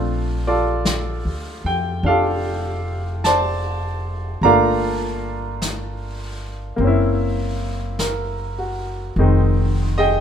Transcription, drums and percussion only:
0.85 brush sweep soft
0.85 snare soft
0.85 hi-hat pedal soft
2.05 brush sweep soft
3.24 brush sweep soft
3.24 snare soft
3.24 hi-hat pedal soft
4.43 brush sweep soft
5.62 brush sweep soft
5.62 snare soft
5.62 hi-hat pedal soft
6.80 brush sweep soft
7.99 brush sweep soft
7.99 snare soft
7.99 hi-hat pedal soft
9.17 brush sweep soft

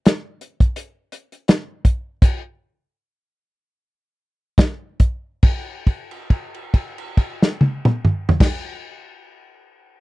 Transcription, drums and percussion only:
0.06 snare loud
0.06 closed hi-hat medium
0.41 closed hi-hat medium
0.60 kick medium
0.60 closed hi-hat soft
0.76 closed hi-hat medium
1.12 closed hi-hat medium
1.32 closed hi-hat soft
1.48 snare loud
1.48 closed hi-hat medium
1.85 kick medium
1.85 closed hi-hat medium
2.22 kick loud
2.22 closed hi-hat medium
2.22 crash medium
4.58 kick medium
4.58 snare loud
4.58 closed hi-hat medium
5.00 kick medium
5.00 closed hi-hat medium
5.43 kick loud
5.43 crash medium
5.87 kick medium
5.87 crash soft
6.11 crash soft
6.30 kick medium
6.30 crash soft
6.54 crash soft
6.74 kick medium
6.74 crash soft
6.98 crash medium
7.17 kick medium
7.17 crash medium
7.42 snare medium
7.61 high tom loud
7.85 mid tom loud
8.05 mid tom loud
8.29 floor tom loud
8.40 kick loud
8.40 snare loud
8.40 crash loud

